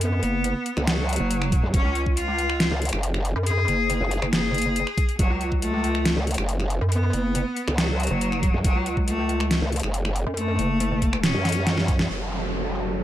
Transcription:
Already playing: F#2
0.01 B3, closed hi-hat
0.23 F#1, closed hi-hat
0.44 closed hi-hat
0.66 closed hi-hat
0.77 C#2, finger snap
0.87 F#3, snare, closed hi-hat
1.09 closed hi-hat
1.13 closed hi-hat
1.16 F#1, closed hi-hat
1.31 closed hi-hat
1.42 finger snap
1.52 kick, closed hi-hat
1.63 F#2
1.74 F#1 C#4, kick, closed hi-hat
1.85 C#2
1.95 closed hi-hat
2.06 kick
2.17 F4, closed hi-hat
2.39 closed hi-hat
2.50 finger snap
2.60 snare, closed hi-hat
2.71 C#2
2.82 closed hi-hat
2.85 closed hi-hat
2.89 F#1, finger snap, closed hi-hat
3.03 closed hi-hat
3.14 finger snap
3.25 closed hi-hat
3.36 F#2
3.46 G#4, closed hi-hat
3.68 F#1, closed hi-hat
3.90 closed hi-hat
4.01 F#1
4.11 closed hi-hat
4.22 F#1, finger snap
4.33 G#4, snare, closed hi-hat
4.54 closed hi-hat
4.58 closed hi-hat
4.62 closed hi-hat
4.76 closed hi-hat
4.87 finger snap
4.98 kick, closed hi-hat
5.09 closed hi-hat
5.19 F#1 F#3, kick, closed hi-hat
5.30 C#2
5.41 closed hi-hat
5.52 kick
5.62 A3, closed hi-hat
5.84 closed hi-hat
5.95 finger snap
6.05 snare, closed hi-hat
6.16 C#2
6.27 closed hi-hat
6.31 closed hi-hat
6.34 F#1, finger snap, closed hi-hat
6.49 closed hi-hat
6.60 finger snap
6.70 closed hi-hat
6.81 F#2
6.92 B3, closed hi-hat
7.13 F#1, closed hi-hat
7.35 closed hi-hat
7.57 closed hi-hat
7.68 C#2, finger snap
7.78 F#3, snare, closed hi-hat
8.00 closed hi-hat
8.03 closed hi-hat
8.07 F#1, closed hi-hat
8.21 closed hi-hat
8.32 finger snap
8.43 kick, closed hi-hat
8.54 F#2
8.64 F#1 F#3, kick, closed hi-hat
8.76 C#2
8.86 closed hi-hat
8.97 kick
9.07 A3, closed hi-hat
9.29 closed hi-hat
9.40 finger snap
9.51 snare, closed hi-hat
9.62 C#2
9.72 closed hi-hat
9.76 closed hi-hat
9.80 F#1, finger snap, closed hi-hat
9.94 closed hi-hat
10.05 finger snap
10.16 closed hi-hat
10.27 F#2
10.37 A3, closed hi-hat
10.59 F#1, closed hi-hat
10.80 closed hi-hat
10.91 F#1
11.02 kick, closed hi-hat
11.13 finger snap
11.23 C#4, snare, closed hi-hat
11.35 F#2
11.45 snare, closed hi-hat
11.49 closed hi-hat
11.52 closed hi-hat
11.67 snare, closed hi-hat
11.78 snare
11.88 kick, closed hi-hat
11.99 snare
12.10 F#1 F#3 C#4 A4, downlifter
12.41 A4
12.68 F#5

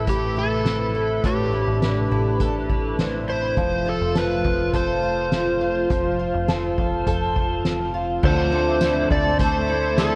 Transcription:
Already playing: A2 C3 A3 E4 B4
0.07 A1 G4 B4, kick, closed hi-hat
0.37 E4 A4
0.66 C4, snare, closed hi-hat
0.95 E4
1.24 A1 A2 D4 G4, kick, closed hi-hat
1.53 E4
1.67 A1
1.82 B4, snare, closed hi-hat
2.11 A1 E4
2.40 A1 A4, kick, closed hi-hat
2.70 E4, kick
2.99 C4, snare, closed hi-hat
3.28 E4 C5
3.57 F1 F3 F4, kick, closed hi-hat
3.86 F4 A4
4.01 F1
4.15 A4 B4, snare, closed hi-hat
4.44 F1 F4, kick
4.74 F1 A4 C5, kick, closed hi-hat
5.03 F4
5.32 C4, snare, closed hi-hat
5.61 F4
5.90 F1 F3, kick, closed hi-hat
6.19 F4
6.34 F1
6.48 A4, snare, closed hi-hat
6.78 F1 F4, kick
7.07 F1 A4, kick, closed hi-hat
7.36 F4, kick
7.65 C4, snare, closed hi-hat
7.94 F4
8.22 D2 D3 F3 A3 C4 E4 A4 C5 D5 E5 D6, kick, crash
8.51 C4 E4 A4
8.56 A3
8.80 D3 F3 A3 C4 E4 A4, snare, closed hi-hat, tambourine
9.09 D2 C4 E4 A4 D5, kick
9.14 A3
9.38 A3 C4 E4 C5, kick, closed hi-hat
9.43 A4
9.67 C4 E4 A4
9.72 A3
9.97 D3 F3 A3 C4 E4 A4, snare, closed hi-hat, tambourine

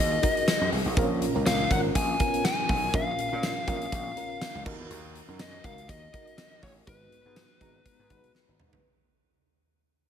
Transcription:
Already playing: D#3 D#4 F#4 G#4 A#4 D#5
0.00 D#2
0.22 D#4 F#4 A#4, kick, closed hi-hat
0.37 closed hi-hat
0.48 snare, closed hi-hat, tambourine
0.61 F#2
0.72 C2, open hi-hat
0.85 B1
0.96 A#1 A#2 C4 F4 A#4, kick, closed hi-hat
1.02 C#4
1.22 closed hi-hat
1.35 C#2 C#4 F4 A#4
1.46 C#2 F5, snare, closed hi-hat, tambourine
1.70 G#1 C#4 F4 A#4 F#5, kick, closed hi-hat
1.95 A#1 G#5, kick, closed hi-hat
2.20 B3 F4 A#4, kick, closed hi-hat
2.25 C#4
2.34 closed hi-hat
2.45 G#5, snare, closed hi-hat, tambourine
2.69 B1, kick, open hi-hat
2.94 A#1 A#2 C#4 F4 A#4 F5, kick, closed hi-hat
3.19 closed hi-hat
3.31 A#2 C#4 F4 A#4
3.43 snare, closed hi-hat, tambourine
3.67 A#1 C#4 F4 A#4 F5, kick, closed hi-hat
3.82 closed hi-hat
3.92 A#1, kick, closed hi-hat
4.17 C#4 F4 A#4, closed hi-hat
4.41 snare, closed hi-hat, tambourine
4.55 C#2
4.65 D#2 D#3 D#4 F#4 A#4, kick, crash
4.80 E2
4.90 D#2, closed hi-hat
5.15 closed hi-hat
5.28 F#2 D#4 F#4 A#4
5.39 F#2 D#5, snare, closed hi-hat, tambourine
5.64 C#2 D#4 F#4 A#4 F5, kick, closed hi-hat
5.78 closed hi-hat
5.89 D#2 D#5, kick, closed hi-hat
6.14 D#4 F#4 A#4, kick, closed hi-hat
6.27 closed hi-hat
6.38 snare, closed hi-hat, tambourine
6.63 A1 C#5, kick, open hi-hat
6.87 G#1 G#2 G#3 B3 D#4 F#4 B4, kick, closed hi-hat
7.12 closed hi-hat
7.25 G#2 G#3 B3 D#4 F#4 B4
7.36 snare, closed hi-hat, tambourine
7.61 G#1 G#3 B3 D#4 F#4 A#5, kick, closed hi-hat
7.86 kick, closed hi-hat
7.99 G#2
8.10 G#1 G#3 B3 D#4 F#4 B4, kick, closed hi-hat
8.24 B1, closed hi-hat
8.35 snare
8.48 G#1
8.60 G#2, mid tom
8.73 floor tom

